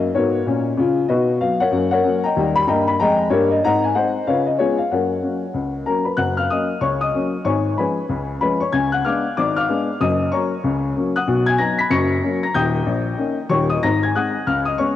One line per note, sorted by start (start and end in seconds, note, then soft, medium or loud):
0.15 0.40 G#2 medium
0.15 0.41 B3 medium
0.15 0.63 F#4 medium
0.15 0.63 A#4 medium
0.15 0.58 C#5 medium
0.47 0.72 A#2 medium
0.47 0.72 C#4 medium
0.77 1.03 C#3 medium
0.77 1.04 F4 medium
1.08 1.36 B2 medium
1.08 1.28 D#4 medium
1.08 1.39 F#4 medium
1.08 1.39 B4 medium
1.08 1.36 D#5 medium
1.41 1.58 F#3 soft
1.41 1.59 B3 soft
1.41 1.58 F5 medium
1.60 1.91 A#4 medium
1.60 1.91 C#5 medium
1.60 1.88 F#5 medium
1.71 1.99 F#2 medium
1.71 1.91 A#3 soft
1.91 2.22 A#4 medium
1.91 2.22 C#5 medium
1.91 2.19 F#5 medium
2.04 2.21 F#3 medium
2.04 2.22 A#3 soft
2.04 2.22 C#4 medium
2.24 2.55 D#5 medium
2.24 2.54 G5 medium
2.24 2.51 A#5 medium
2.36 2.62 D#2 medium
2.36 2.63 G3 medium
2.56 2.66 B5 loud
2.67 2.93 G2 medium
2.67 2.95 A#3 medium
2.67 2.87 D#5 medium
2.67 2.87 G5 medium
2.67 2.85 A#5 medium
2.88 2.98 B5 medium
3.00 3.25 F2 medium
3.00 3.27 G#3 medium
3.00 3.30 D#5 medium
3.00 3.30 G5 medium
3.00 3.27 A#5 loud
3.30 3.56 G2 medium
3.30 3.57 A#3 medium
3.30 3.50 G4 medium
3.30 3.50 A#4 medium
3.30 3.48 C#5 medium
3.51 3.61 D#5 medium
3.64 3.91 G#2 medium
3.64 3.83 C4 soft
3.64 3.83 D#5 medium
3.64 3.83 F#5 medium
3.64 3.81 A#5 loud
3.84 3.94 G#5 medium
3.95 4.13 G#3 soft
3.95 4.13 C4 soft
3.95 4.13 D#4 soft
3.95 4.25 C5 medium
3.95 4.25 D#5 medium
3.95 4.22 F#5 medium
4.27 4.54 C#3 medium
4.27 4.46 F4 soft
4.27 4.46 B4 medium
4.27 4.46 C#5 medium
4.27 4.44 F5 medium
4.46 4.57 D#5 medium
4.59 4.77 G#3 soft
4.59 4.77 B3 soft
4.59 4.77 C#4 soft
4.59 4.78 F4 medium
4.59 4.78 G#4 medium
4.59 4.76 C#5 medium
4.78 4.89 F5 medium
4.91 5.18 F#2 medium
4.91 5.10 A#3 soft
4.91 5.83 A#4 soft
4.91 5.83 C#5 soft
4.91 5.72 F#5 medium
5.22 5.40 F#3 soft
5.22 5.40 A#3 soft
5.22 5.40 C#4 soft
5.54 5.81 C#2 soft
5.86 6.04 F#3 soft
5.86 6.04 A#3 soft
5.86 6.05 C#4 soft
5.86 6.05 A#4 medium
5.86 6.03 A#5 medium
6.05 6.17 B4 soft
6.05 6.16 B5 soft
6.17 6.45 F#1 medium
6.17 6.45 F#2 medium
6.17 6.37 F#5 medium
6.17 6.34 F#6 medium
6.37 6.49 F5 medium
6.37 6.48 F6 medium
6.50 6.68 F#3 soft
6.50 6.68 A#3 soft
6.50 6.69 C#4 soft
6.50 6.80 D#5 soft
6.50 6.77 D#6 medium
6.81 7.08 C#2 medium
6.81 7.09 C#3 medium
6.81 7.00 C#5 medium
6.81 6.98 C#6 medium
7.01 7.43 D#5 medium
7.01 7.39 D#6 medium
7.14 7.31 F#3 soft
7.14 7.32 A#3 soft
7.14 7.32 C#4 soft
7.44 7.72 G#1 soft
7.44 7.72 G#2 medium
7.44 7.75 C#5 medium
7.44 7.75 G#5 medium
7.44 7.72 C#6 medium
7.78 7.96 F3 soft
7.78 7.96 G#3 soft
7.78 7.96 C#4 soft
7.78 8.27 B4 medium
7.78 8.26 G#5 soft
7.78 8.21 B5 medium
8.08 8.36 C#2 medium
8.08 8.36 C#3 medium
8.41 8.59 F3 soft
8.41 8.59 G#3 soft
8.41 8.59 C#4 medium
8.41 8.60 B4 medium
8.41 8.58 B5 medium
8.60 8.72 C#5 medium
8.60 8.71 C#6 medium
8.72 9.00 C#2 medium
8.72 9.00 C#3 medium
8.72 8.92 G#5 medium
8.72 8.90 G#6 medium
8.92 9.04 F#5 medium
8.92 9.03 F#6 medium
9.04 9.23 G#3 soft
9.04 9.23 B3 soft
9.04 9.23 D4 soft
9.04 9.35 F5 medium
9.04 9.35 D6 medium
9.04 9.32 F6 medium
9.37 9.64 G#1 medium
9.37 9.64 G#2 medium
9.37 9.56 D5 medium
9.37 9.54 D6 medium
9.56 9.98 F5 medium
9.56 9.98 D6 medium
9.56 9.94 F6 medium
9.69 9.86 G#3 soft
9.69 9.87 B3 medium
9.69 9.87 D4 medium
10.01 10.28 F#1 medium
10.01 10.28 F#2 medium
10.01 10.31 D#5 medium
10.01 10.28 D#6 medium
10.32 10.50 F#3 soft
10.32 10.50 A#3 soft
10.32 10.50 C#4 soft
10.32 10.81 C#5 soft
10.32 10.81 A#5 medium
10.32 10.76 C#6 medium
10.64 10.91 C#2 medium
10.64 10.91 C#3 medium
10.96 11.14 F#3 soft
10.96 11.14 A#3 soft
10.96 11.14 C#4 medium
11.16 11.46 F#5 medium
11.16 11.46 D#6 medium
11.16 11.43 F#6 medium
11.27 11.55 B1 medium
11.27 11.55 B2 medium
11.46 11.59 G#5 medium
11.46 11.57 G#6 loud
11.58 11.76 F#3 soft
11.58 11.77 B3 soft
11.58 11.77 D#4 soft
11.58 11.78 A#5 medium
11.58 11.76 A#6 medium
11.79 11.91 B5 medium
11.79 11.89 B6 medium
11.90 12.18 F#1 medium
11.90 12.18 F#2 medium
11.90 12.39 C#6 medium
11.90 12.40 A#6 medium
11.90 12.35 C#7 medium
12.23 12.41 F#3 medium
12.23 12.41 A#3 soft
12.23 12.41 C#4 soft
12.43 12.55 A#5 medium
12.43 12.54 A#6 medium
12.54 12.80 D#1 medium
12.54 12.80 D#2 medium
12.54 13.47 G5 medium
12.54 13.47 D#6 medium
12.54 13.36 G6 medium
12.86 13.12 A#1 medium
13.18 13.36 A#3 soft
13.18 13.36 C#4 soft
13.18 13.36 D#4 soft
13.50 13.76 D#1 medium
13.50 13.76 D#2 medium
13.50 13.69 C#5 medium
13.50 13.67 C#6 medium
13.70 13.82 D#5 medium
13.70 13.80 D#6 medium
13.83 14.10 G#1 medium
13.83 14.10 G#2 medium
13.83 14.02 A#5 medium
13.83 14.00 A#6 loud
14.03 14.15 G#5 medium
14.03 14.13 G#6 medium
14.15 14.33 G#3 soft
14.15 14.33 C4 soft
14.15 14.33 D#4 soft
14.15 14.45 F#5 medium
14.15 14.45 D#6 medium
14.15 14.42 F#6 medium
14.47 14.74 C#2 medium
14.47 14.74 C#3 medium
14.47 14.66 F5 medium
14.47 14.64 F6 medium
14.65 14.78 D#5 medium
14.65 14.76 D#6 medium
14.78 14.96 G#3 soft
14.78 14.96 B3 soft
14.78 14.96 C#4 soft
14.78 14.96 C#5 medium
14.78 14.95 C#6 medium